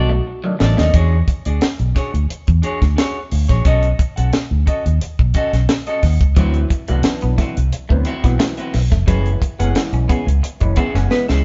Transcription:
Already playing: B1 D#3 F#3 A3 B3 D4 D#4 F#4 A4
0.09 A3, muted clean electric guitar stroke
0.26 muted clean electric guitar stroke
0.44 D#3 F#3 A3 D4, muted clean electric guitar stroke
0.59 A1 D#3 F#3 A3 B3 D4 D#4 A4 D5, muted clean electric guitar stroke, snare
0.77 D#2 A3 B3 D#4 A4 D#5, snare
0.94 E2 D4 F#4 G#4 C#5, kick, closed hi-hat
1.28 muted clean electric guitar stroke, kick, closed hi-hat
1.45 D2 D4 F#4 G#4 D5, closed hi-hat
1.61 muted clean electric guitar stroke, snare, closed hi-hat
1.79 B1, closed hi-hat
1.95 D4 F#4 G#4 C#5, kick, snare, closed hi-hat
2.12 D2, muted clean electric guitar stroke, closed hi-hat
2.29 muted clean electric guitar stroke, muted fingered electric bass stroke, closed hi-hat
2.47 E2, muted clean electric guitar stroke, kick, closed hi-hat
2.62 D4 F#4 G#4 C#5, closed hi-hat
2.81 D2, muted clean electric guitar stroke, kick, snare, closed hi-hat
2.96 D4 F#4 G#4 C#5, snare, closed hi-hat
3.31 D2, muted clean electric guitar stroke, open hi-hat
3.49 A#1 D4 F#4 G#4 C#5, kick, snare, closed hi-hat
3.65 B1 C#4 F#4 A4 D#5, kick, closed hi-hat
3.83 closed hi-hat
3.99 muted clean electric guitar stroke, kick, closed hi-hat
4.16 B1 C#4 F#4 A4 F#5, closed hi-hat
4.32 muted clean electric guitar stroke, snare, closed hi-hat
4.51 D2
4.66 C#4 F#4 A4 D#5, kick, closed hi-hat
4.85 D#2, muted clean electric guitar stroke, closed hi-hat
5.00 muted clean electric guitar stroke, muted fingered electric bass stroke, closed hi-hat
5.19 B1, muted clean electric guitar stroke, kick
5.34 C#4 F#4 A4 D#5, kick, closed hi-hat
5.53 B1, muted clean electric guitar stroke, snare, closed hi-hat
5.68 muted clean electric guitar stroke, snare, closed hi-hat
5.87 C#4 F#4 A4 D#5, closed hi-hat
6.02 D#2, muted clean electric guitar stroke, kick, snare, open hi-hat
6.20 C#2, muted clean electric guitar stroke, kick, closed hi-hat
6.36 D2 E3 F#3 B3 C4 F#4 B4 E5, kick, closed hi-hat
6.54 closed hi-hat
6.70 muted clean electric guitar stroke, kick, closed hi-hat
6.88 C2 E3 F#3 A3 B3 C4 D4 F#4 B4 F#5, closed hi-hat
7.03 muted clean electric guitar stroke, snare, closed hi-hat
7.21 B1 B3, closed hi-hat
7.38 A3 C4 F#4 B4 E5, kick, snare, closed hi-hat
7.56 C2, muted clean electric guitar stroke, closed hi-hat
7.72 muted clean electric guitar stroke, muted fingered electric bass stroke, closed hi-hat
7.89 D2 E3 F#3 A3 B3 C4, muted clean electric guitar stroke, kick
8.05 C4 F#4 B4 E5, muted clean electric guitar stroke, closed hi-hat
8.24 B1 E3 F#3 B3 C4, muted clean electric guitar stroke, kick, snare, closed hi-hat
8.39 A3, muted clean electric guitar stroke, snare, closed hi-hat
8.57 C4 F#4 B4 E5, closed hi-hat
8.74 B1, muted clean electric guitar stroke, snare, open hi-hat
8.91 F1 A3, muted clean electric guitar stroke, kick, snare, closed hi-hat
9.07 F#1 E3 F#3 G#3 B3 C#4 G#4 B4 E5, kick, closed hi-hat
9.26 closed hi-hat
9.41 muted clean electric guitar stroke, kick, closed hi-hat
9.59 F#1 E3 G#3 B3 C#4 G#4 B4 F#5, closed hi-hat
9.75 muted clean electric guitar stroke, muted fingered electric bass stroke, snare, closed hi-hat
9.93 B1 C#4, closed hi-hat
10.08 B3 C#4 G#4 B4 E5, kick, closed hi-hat
10.26 C#2, muted clean electric guitar stroke, closed hi-hat
10.42 muted clean electric guitar stroke, closed hi-hat
10.60 F#1 E3 G#3 B3 C#4, muted clean electric guitar stroke, kick, closed hi-hat
10.76 B3 C#4 G#4 B4 E5, kick, closed hi-hat
10.94 F#1 E3 G#3 B3 C#4, muted clean electric guitar stroke, snare, closed hi-hat
11.10 B3 G#4, muted clean electric guitar stroke, snare
11.28 C#2 C#4 G#4 B4 E5, snare

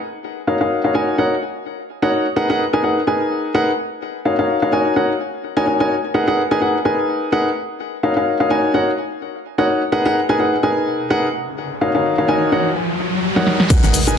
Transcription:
0.47 D#4 F#4 A#4 C#5 F5
0.61 D#4 F#4 A#4 C#5 F5
0.84 D#4 F#4 A#4 C#5 F5
0.95 D#4 F#4 A#4 C#5 G#5
1.18 D#4 F#4 A#4 C#5 F#5
2.02 D#4 F#4 A#4 C#5 F#5
2.36 D#4 G#4 A#4 B4 F#5
2.50 D#4 G#4 A#4 B4 F#5
2.73 D#4 G#4 A#4 B4 G#5
2.84 D#4 G#4 A#4 B4 F#5
3.07 D#4 G#4 A#4 B4 G#5
3.54 D#4 G#4 A#4 B4 F#5
4.25 D#4 F#4 A#4 C#5 F5
4.39 D#4 F#4 A#4 C#5 F5
4.62 D#4 F#4 A#4 C#5 F5
4.73 D#4 F#4 A#4 C#5 G#5
4.96 D#4 F#4 A#4 C#5 F#5
5.57 D#4 F#4 A#4 C#5 G#5
5.67 D#4 F#4 A#4 C#5 G#5
5.80 D#4 F#4 A#4 C#5 G#5
6.14 D#4 G#4 A#4 B4 F#5
6.28 D#4 G#4 A#4 B4 F#5
6.51 D#4 G#4 A#4 B4 G#5
6.61 D#4 G#4 A#4 B4 F#5
6.85 D#4 G#4 A#4 B4 G#5
7.32 D#4 G#4 A#4 B4 F#5
8.03 D#4 F#4 A#4 C#5 F5
8.16 D#4 F#4 A#4 C#5 F5
8.40 D#4 F#4 A#4 C#5 F5
8.50 D#4 F#4 A#4 C#5 G#5
8.74 D#4 F#4 A#4 C#5 F#5
9.58 D#4 F#4 A#4 C#5 F#5
9.92 D#4 G#4 A#4 B4 F#5, riser
10.05 D#4 G#4 A#4 B4 F#5
10.29 D#4 G#4 A#4 B4 G#5
10.39 D#4 G#4 A#4 B4 F#5
10.63 D#4 G#4 A#4 B4 G#5
11.10 D#4 G#4 A#4 B4 F#5
11.81 D#4 F#4 A#4 C#5 F5
11.95 D#4 F#4 A#4 C#5 F5
12.18 D#4 F#4 A#4 C#5 F5
12.28 D#4 F#4 A#4 C#5 G#5
12.52 D#4 F#4 A#4 C#5 F#5
13.36 D#4 F#4 A#4 C#5 F#5, snare
13.47 snare
13.60 snare
13.70 D#4 G#4 A#4 B4 F#5, kick, closed hi-hat, crash, ride, impact, shaker
13.83 G#1 D#4 G#4 A#4 B4 F#5, closed hi-hat, ride, shaker
13.94 open hi-hat, ride, shaker
14.07 D#4 G#4 A#4 B4 G#5, closed hi-hat, shaker

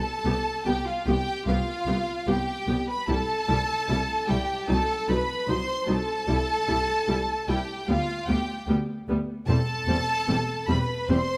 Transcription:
Already playing: A4 A5
0.25 C2 B3 G4
0.66 C2 B3 G4 G5
0.86 F4 F5
1.06 C2 B3 G4 G5
1.47 C2 B3 F4 G4 F5
1.87 C2 B3 G4
2.27 C2 B3 G4 G5
2.68 C2 B3 G4
2.89 B4 B5
3.08 C2 G3 E4 A4 A5
3.48 C2 G3 E4
3.89 C2 G3 E4
4.28 C2 G3 E4 G4 G5
4.68 C2 F#3 D#4 A4 A5
5.08 C2 F#3 D#4 B4 B5
5.48 C2 F#3 D#4 C5 C6
5.88 C2 F#3 D#4 A4 A5
6.28 C2 G3 E4
6.68 C2 G3 E4
7.08 C2 G3 E4
7.49 C2 G3 E4 G4 G5
7.88 D2 G3 B3 F4 F5
8.28 D2 G3 B3 G4 G5
8.67 D2 G3 B3
9.09 D2 G3 B3
9.48 E1 E2 G3 C4 A4 A5
9.88 E1 E2 G3 C4
10.28 E1 E2 G3 C4
10.68 E1 E2 G3 C4 B4 B5
11.07 E1 E2 G3 C4 C5 C6

